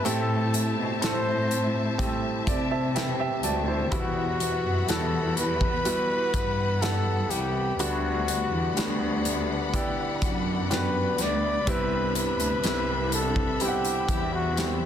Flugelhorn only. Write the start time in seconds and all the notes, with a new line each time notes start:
0.05 A4
1.02 C5
3.94 F#4
4.89 A4
5.38 B4
6.81 A4
7.30 G4
7.81 F#4
10.73 B4
11.22 D5
11.70 B4
12.17 B4
13.14 A4
13.62 G4
14.34 F#4